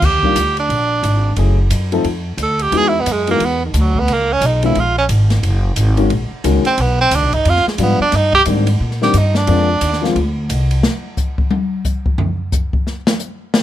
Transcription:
0.02 D#2 G4, kick, snare, crash
0.23 D#3 G3 A#3 D4 F4, kick
0.35 D2, hi-hat pedal, ride
0.57 D4, ride
0.69 A#1, ride
1.03 G#1, hi-hat pedal, ride
1.36 F#1 F#3 A3 C#4 E4 G#4, ride
1.70 F#2, hi-hat pedal, ride
1.92 F3 A3 C4 D#4 A4, ride
2.04 F2, ride
2.37 D2, hi-hat pedal, ride
2.43 A4
2.59 G4, ride
2.72 E2 E3 G#3 B3 D#4 F#4, ride
2.77 G#4
2.88 E4
3.00 B3
3.06 F#2, hi-hat pedal, ride
3.12 G#3
3.27 E3 G#3 A#3 B3 D#4 F#4, ride
3.40 E2, ride
3.45 B3
3.65 D#3
3.74 D2, hi-hat pedal, ride
3.80 F#3
3.95 kick
4.00 B3
4.08 C#2, ride
4.13 A#3
4.32 C#4
4.41 B1, hi-hat pedal, ride
4.46 D#4
4.63 D#3 G#3 B3 C#4 E4 F4, ride
4.75 A#1, ride
4.79 F4
4.98 C#4
5.09 G#1, hi-hat pedal, ride
5.30 snare, ride
5.43 F#1, ride
5.76 G#1, hi-hat pedal, ride
5.97 D#3 G#3 A#3 C#4 F#4, ride
6.10 A#1, ride
6.31 muted upright bass stroke
6.44 C#2 D#3 G#3 A#3 C#4 F#4, hi-hat pedal, ride
6.65 C4, muted upright bass stroke, ride
6.78 B1 B3, ride
7.01 C4
7.11 D2, hi-hat pedal, ride
7.15 D4
7.22 B1
7.32 G1 D#4, kick, ride
7.45 F2, ride
7.49 F4
7.56 snare
7.66 G#3, muted upright bass stroke, snare
7.78 G#2 F3 G3 B3 D4 F4, hi-hat pedal, ride
7.83 B3
8.00 D4, muted upright bass stroke
8.12 G2, snare, ride
8.16 D#4
8.33 G4, kick
8.45 G#2 D#3 G3 A#3 C4 D4, hi-hat pedal, ride
8.67 ride
8.80 A#2
8.91 snare
9.01 D#3 G3 A#3 C4 D4 G4, snare
9.14 G2 D#4, hi-hat pedal, ride
9.35 D4, snare
9.47 F2 F3 G#3 A#3 C4 D4, ride
9.81 D#2, hi-hat pedal, ride
9.93 snare
10.02 F3 G#3 A#3 C4 F4, snare
10.15 D2, ride
10.49 C2, hi-hat pedal, ride
10.71 ride
10.83 snare
11.17 kick, hi-hat pedal
11.38 kick
11.51 high tom
11.85 kick, hi-hat pedal
12.06 kick
12.18 floor tom
12.52 kick, hi-hat pedal
12.73 kick
12.87 snare
13.07 snare
13.20 hi-hat pedal
13.54 snare

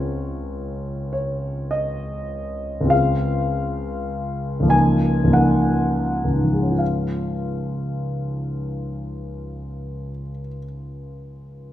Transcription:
Already playing: C#2 G#3 C4 F4 G#4 C#5
1.13 C#5
1.71 D#5
2.81 C#2 G#3
2.85 C4 F4
2.90 G#4 F5
4.60 C#2 F3
4.65 A#3 D#4 A#4
4.70 G#5
5.24 C#2 F3
5.28 A#3 D#4
5.33 A#4 F#5
6.25 C#2
6.34 G#2
6.43 F3
6.52 G#3
6.62 C#4
6.71 F4
6.79 F5

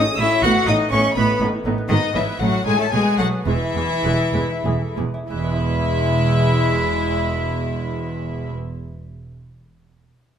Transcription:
Already playing: A2 F#4 D#6
0.07 G#4
0.19 A1 A2 C#4 E4 F#4 E5 E6
0.32 C#4
0.43 A1 A2 B3 F#4 F#5 F#6
0.56 B3
0.67 A1 A2 B3 C#4 D#4 D#5 D#6
0.80 B3
0.91 A1 A2 A3 B3 C#4 C#5 C#6
1.04 D#4
1.16 A1 A2 B3 B4 B5
1.29 B3
1.41 A1 A2 B3 D#4
1.53 E4
1.65 A1 A2 B3 D#4
1.78 B3
1.89 G#1 G#2 D#3 B3 D#4 D#5
2.02 B3
2.14 G#1 G#2 E3 B3 C#4 E4 E5
2.26 B3
2.38 A1 A2 F#3 A3 F#4 F#5
2.52 C#4
2.65 A1 A2 G#3 A3 D#4 G#4 G#5
2.79 A3 C#4 A4 A5
2.91 B1 B2 G#3 A3 G#4 G#5
3.05 B3
3.18 B1 B2 F#3 A3 C#4 F#4 F#5
3.32 B3
3.45 E1 E2 E3 G#3 E4 E5
3.61 E4
3.75 E1 E2 G#3 F#4
3.89 E4
4.04 E1 E2 G#3 B3
4.19 G#4
4.34 E1 E2 G#3 B4
4.50 E4
4.65 E1 E2 G#3 G#4
4.81 A4
4.96 E1 E2 G#3 G#4
5.14 E4
5.29 E1 E2 E3 G#3 E4 E5
5.37 G#3
5.44 B3
5.51 E4
5.58 B4

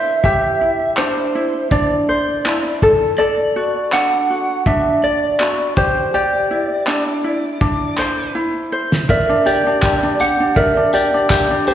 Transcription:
Already playing: D4 E4 G4 C5 E5
0.24 G4 E5, kick
0.61 E4
0.97 D4 C5, clap
1.35 E4
1.71 D4 D5, kick
2.09 C5
2.45 E4, clap
2.82 A4, kick
3.18 A4 D5
3.56 F#4
3.93 D4 F#5, clap
4.30 F#4
4.66 D4 E5, kick
5.04 D5
5.40 F#4, clap
5.77 G4 C5, kick
6.14 G4 D5
6.51 E4
6.87 D4, clap
7.24 E4
7.61 D4, kick
7.98 C5, clap
8.35 E4
8.72 C5
8.92 snare
9.09 A#4 D5 E5, kick
9.29 D4
9.46 G4 D5, tambourine
9.67 D4
9.82 G4, kick, clap, tambourine
10.03 D4
10.20 G4 F#5, tambourine
10.40 D4
10.56 A#4 D5 E5, kick
10.77 D4
10.93 G4 D5, tambourine
11.14 D4
11.30 G4, kick, clap, tambourine
11.51 D4
11.67 G4 C5, tambourine

